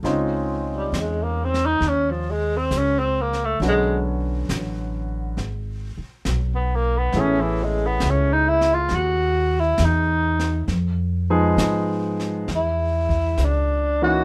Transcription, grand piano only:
0, 0, Header, 1, 2, 480
1, 0, Start_track
1, 0, Tempo, 886263
1, 21, Time_signature, 4, 2, 24, 8
1, 5301, Tempo, 900901
1, 7675, End_track
2, 0, Start_track
2, 0, Title_t, "Grand piano"
2, 0, Program_c, 0, 0
2, 0, Control_c, 0, 64, 127
2, 21, Note_on_c, 0, 65, 60
2, 26, Note_on_c, 0, 56, 51
2, 27, Note_on_c, 0, 60, 54
2, 28, Note_on_c, 0, 63, 63
2, 29, Control_c, 0, 64, 0
2, 29, Note_on_c, 0, 61, 56
2, 133, Control_c, 0, 64, 127
2, 1380, Note_off_c, 0, 65, 0
2, 1383, Note_off_c, 0, 56, 0
2, 1383, Note_off_c, 0, 60, 0
2, 1384, Note_off_c, 0, 61, 0
2, 1384, Note_off_c, 0, 63, 0
2, 1959, Control_c, 0, 64, 0
2, 1960, Note_on_c, 0, 50, 53
2, 1961, Note_on_c, 0, 54, 48
2, 1962, Note_on_c, 0, 59, 48
2, 1964, Note_on_c, 0, 61, 49
2, 1966, Note_on_c, 0, 66, 58
2, 2051, Control_c, 0, 64, 127
2, 2912, Note_off_c, 0, 50, 0
2, 2913, Note_off_c, 0, 54, 0
2, 2913, Note_off_c, 0, 59, 0
2, 2914, Note_off_c, 0, 61, 0
2, 2915, Note_off_c, 0, 66, 0
2, 2916, Control_c, 0, 64, 0
2, 3875, Note_on_c, 0, 64, 50
2, 3877, Note_on_c, 0, 57, 48
2, 3879, Note_on_c, 0, 61, 48
2, 3882, Note_on_c, 0, 59, 49
2, 3883, Note_on_c, 0, 68, 55
2, 3960, Control_c, 0, 64, 127
2, 5218, Note_off_c, 0, 64, 0
2, 5219, Note_off_c, 0, 57, 0
2, 5220, Note_off_c, 0, 61, 0
2, 5221, Note_off_c, 0, 59, 0
2, 5222, Note_off_c, 0, 68, 0
2, 5786, Control_c, 0, 64, 0
2, 5865, Control_c, 0, 64, 127
2, 6107, Note_on_c, 0, 63, 67
2, 6108, Note_on_c, 0, 53, 70
2, 6108, Note_on_c, 0, 56, 64
2, 6109, Note_on_c, 0, 59, 64
2, 6111, Note_on_c, 0, 68, 80
2, 6242, Note_off_c, 0, 53, 0
2, 6242, Note_off_c, 0, 56, 0
2, 6242, Note_off_c, 0, 63, 0
2, 6243, Note_off_c, 0, 59, 0
2, 6244, Note_off_c, 0, 68, 0
2, 6742, Control_c, 0, 64, 0
2, 6824, Control_c, 0, 64, 127
2, 7556, Note_on_c, 0, 52, 62
2, 7556, Note_on_c, 0, 58, 52
2, 7556, Note_on_c, 0, 63, 54
2, 7558, Note_on_c, 0, 61, 55
2, 7559, Note_on_c, 0, 66, 67
2, 7675, Note_off_c, 0, 52, 0
2, 7675, Note_off_c, 0, 58, 0
2, 7675, Note_off_c, 0, 61, 0
2, 7675, Note_off_c, 0, 63, 0
2, 7675, Note_off_c, 0, 66, 0
2, 7675, End_track
0, 0, End_of_file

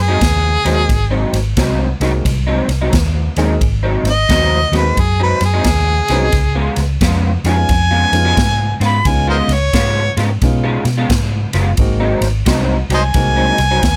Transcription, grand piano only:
0, 0, Header, 1, 2, 480
1, 0, Start_track
1, 0, Tempo, 681044
1, 632, Time_signature, 4, 2, 24, 8
1, 9842, End_track
2, 0, Start_track
2, 0, Title_t, "Grand piano"
2, 0, Program_c, 0, 0
2, 459, Note_on_c, 0, 56, 67
2, 464, Note_on_c, 0, 58, 59
2, 464, Note_on_c, 0, 60, 62
2, 467, Note_on_c, 0, 63, 64
2, 467, Note_on_c, 0, 66, 72
2, 614, Note_off_c, 0, 56, 0
2, 617, Note_off_c, 0, 58, 0
2, 617, Note_off_c, 0, 60, 0
2, 618, Note_off_c, 0, 63, 0
2, 618, Note_off_c, 0, 66, 0
2, 1418, Note_on_c, 0, 56, 66
2, 1418, Note_on_c, 0, 58, 60
2, 1419, Note_on_c, 0, 60, 57
2, 1420, Note_on_c, 0, 63, 59
2, 1424, Note_on_c, 0, 66, 72
2, 1573, Note_off_c, 0, 56, 0
2, 1573, Note_off_c, 0, 58, 0
2, 1573, Note_off_c, 0, 60, 0
2, 1574, Note_off_c, 0, 63, 0
2, 1576, Note_off_c, 0, 66, 0
2, 2377, Note_on_c, 0, 56, 69
2, 2379, Note_on_c, 0, 58, 62
2, 2380, Note_on_c, 0, 60, 59
2, 2380, Note_on_c, 0, 63, 60
2, 2383, Note_on_c, 0, 68, 74
2, 2531, Note_off_c, 0, 56, 0
2, 2532, Note_off_c, 0, 58, 0
2, 2533, Note_off_c, 0, 60, 0
2, 2533, Note_off_c, 0, 63, 0
2, 2534, Note_off_c, 0, 68, 0
2, 3341, Note_on_c, 0, 58, 61
2, 3343, Note_on_c, 0, 56, 62
2, 3346, Note_on_c, 0, 60, 61
2, 3347, Note_on_c, 0, 63, 62
2, 3348, Note_on_c, 0, 66, 76
2, 3492, Note_off_c, 0, 58, 0
2, 3493, Note_off_c, 0, 56, 0
2, 3495, Note_off_c, 0, 60, 0
2, 3495, Note_off_c, 0, 63, 0
2, 3496, Note_off_c, 0, 66, 0
2, 4291, Note_on_c, 0, 56, 66
2, 4294, Note_on_c, 0, 59, 59
2, 4295, Note_on_c, 0, 61, 60
2, 4298, Note_on_c, 0, 63, 58
2, 4300, Note_on_c, 0, 68, 75
2, 4447, Note_off_c, 0, 56, 0
2, 4448, Note_off_c, 0, 59, 0
2, 4449, Note_off_c, 0, 61, 0
2, 4450, Note_off_c, 0, 63, 0
2, 4451, Note_off_c, 0, 68, 0
2, 5252, Note_on_c, 0, 56, 65
2, 5252, Note_on_c, 0, 59, 58
2, 5258, Note_on_c, 0, 61, 64
2, 5258, Note_on_c, 0, 63, 61
2, 5261, Note_on_c, 0, 65, 75
2, 5406, Note_off_c, 0, 56, 0
2, 5407, Note_off_c, 0, 59, 0
2, 5409, Note_off_c, 0, 61, 0
2, 5410, Note_off_c, 0, 63, 0
2, 5411, Note_off_c, 0, 65, 0
2, 5728, Note_on_c, 0, 56, 68
2, 5730, Note_on_c, 0, 61, 62
2, 5731, Note_on_c, 0, 59, 66
2, 5733, Note_on_c, 0, 63, 64
2, 5736, Note_on_c, 0, 65, 80
2, 5884, Note_off_c, 0, 56, 0
2, 5885, Note_off_c, 0, 61, 0
2, 5886, Note_off_c, 0, 59, 0
2, 5887, Note_off_c, 0, 63, 0
2, 5889, Note_off_c, 0, 65, 0
2, 6384, Note_on_c, 0, 56, 63
2, 6384, Note_on_c, 0, 59, 52
2, 6384, Note_on_c, 0, 61, 54
2, 6388, Note_on_c, 0, 65, 65
2, 6391, Note_on_c, 0, 63, 55
2, 6660, Note_off_c, 0, 56, 0
2, 6660, Note_off_c, 0, 61, 0
2, 6661, Note_off_c, 0, 59, 0
2, 6662, Note_off_c, 0, 65, 0
2, 6664, Note_off_c, 0, 63, 0
2, 7349, Note_on_c, 0, 56, 66
2, 7352, Note_on_c, 0, 61, 56
2, 7354, Note_on_c, 0, 59, 57
2, 7354, Note_on_c, 0, 63, 58
2, 7355, Note_on_c, 0, 65, 75
2, 7624, Note_off_c, 0, 56, 0
2, 7625, Note_off_c, 0, 61, 0
2, 7626, Note_off_c, 0, 59, 0
2, 7626, Note_off_c, 0, 63, 0
2, 7627, Note_off_c, 0, 65, 0
2, 8309, Note_on_c, 0, 56, 64
2, 8311, Note_on_c, 0, 58, 59
2, 8312, Note_on_c, 0, 63, 61
2, 8313, Note_on_c, 0, 60, 57
2, 8316, Note_on_c, 0, 66, 68
2, 8585, Note_off_c, 0, 56, 0
2, 8586, Note_off_c, 0, 58, 0
2, 8587, Note_off_c, 0, 60, 0
2, 8587, Note_off_c, 0, 63, 0
2, 8588, Note_off_c, 0, 66, 0
2, 9268, Note_on_c, 0, 56, 65
2, 9271, Note_on_c, 0, 60, 63
2, 9271, Note_on_c, 0, 63, 61
2, 9272, Note_on_c, 0, 58, 63
2, 9276, Note_on_c, 0, 66, 74
2, 9546, Note_off_c, 0, 56, 0
2, 9548, Note_off_c, 0, 58, 0
2, 9548, Note_off_c, 0, 60, 0
2, 9548, Note_off_c, 0, 63, 0
2, 9550, Note_off_c, 0, 66, 0
2, 9842, End_track
0, 0, End_of_file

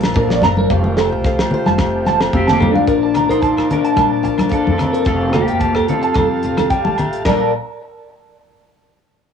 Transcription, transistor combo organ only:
0, 0, Header, 1, 2, 480
1, 0, Start_track
1, 0, Key_signature, -2, "major"
1, 0, Tempo, 546946
1, 613, Time_signature, 4, 2, 24, 8
1, 8190, End_track
2, 0, Start_track
2, 0, Title_t, "Transistor combo organ"
2, 0, Program_c, 0, 18
2, 0, Note_on_c, 0, 58, 71
2, 0, Note_on_c, 0, 62, 60
2, 0, Note_on_c, 0, 69, 73
2, 592, Note_off_c, 0, 69, 0
2, 593, Note_off_c, 0, 62, 0
2, 597, Note_off_c, 0, 58, 0
2, 622, Note_on_c, 0, 67, 78
2, 635, Note_on_c, 0, 65, 65
2, 638, Note_on_c, 0, 57, 66
2, 2510, Note_off_c, 0, 67, 0
2, 2517, Note_off_c, 0, 65, 0
2, 2518, Note_off_c, 0, 57, 0
2, 2533, Note_on_c, 0, 74, 63
2, 2538, Note_on_c, 0, 81, 66
2, 2540, Note_on_c, 0, 58, 54
2, 4430, Note_off_c, 0, 74, 0
2, 4434, Note_off_c, 0, 58, 0
2, 4439, Note_on_c, 0, 67, 62
2, 4444, Note_on_c, 0, 77, 63
2, 6342, Note_off_c, 0, 81, 0
2, 6348, Note_off_c, 0, 67, 0
2, 6350, Note_off_c, 0, 77, 0
2, 6372, Note_on_c, 0, 74, 67
2, 6373, Note_on_c, 0, 69, 65
2, 6374, Note_on_c, 0, 70, 60
2, 6595, Note_off_c, 0, 74, 0
2, 6596, Note_off_c, 0, 69, 0
2, 6596, Note_off_c, 0, 70, 0
2, 8190, End_track
0, 0, End_of_file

